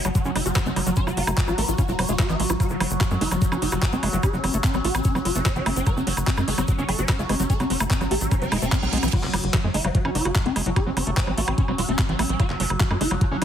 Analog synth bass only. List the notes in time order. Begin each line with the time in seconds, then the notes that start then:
0.05 F#1
0.25 F#1
0.35 F#1
0.46 F#1
0.66 F#1
0.76 F#1
0.86 F#1
1.07 F#1
1.17 F#1
1.27 F#1
1.48 A1
1.58 A1
1.68 A1
1.89 E1
1.99 E1
2.09 E1
2.29 A1
2.40 A1
2.50 A1
2.70 F#1
2.80 F#1
2.91 F#1
3.11 F#2
3.21 F#1
3.31 F#1
3.52 F#1
3.62 F#1
3.72 F#1
3.93 F#1
4.03 F#1
4.13 F#1
4.33 F#1
4.44 F#1
4.54 F#1
4.74 A1
4.84 A1
4.95 A1
5.15 F#1
5.25 F#1
5.35 F#1
5.56 F#1
5.66 F#1
5.76 F#1
5.97 F#1
6.07 F#1
6.17 F#1
6.38 F#2
6.48 F#1
6.58 F#1
6.78 F#1
6.89 F#1
6.99 F#1
7.19 F#1
7.29 F#1
7.40 F#1
7.60 F#1
7.70 F#1
7.80 F#1
8.01 A1
8.11 A1
8.21 A1
8.42 F#1
8.52 E1
8.62 E1
8.82 B1
8.93 B1
9.03 B1
9.23 F#1
9.33 F#1
9.44 F#1
9.64 F#2
9.74 F#1
9.84 F#1
10.05 F#1
10.15 F#1
10.25 F#1
10.46 F#1
10.56 F#1
10.66 F#1
10.86 F#1
10.97 F#1
11.07 F#1
11.27 A1
11.38 A1
11.48 A1
11.68 E1
11.78 E1
11.89 E1
12.09 A1
12.19 A1
12.29 A1
12.50 F#1
12.60 F#1
12.70 F#1
12.91 F#2
13.01 F#1
13.11 F#1
13.31 F#1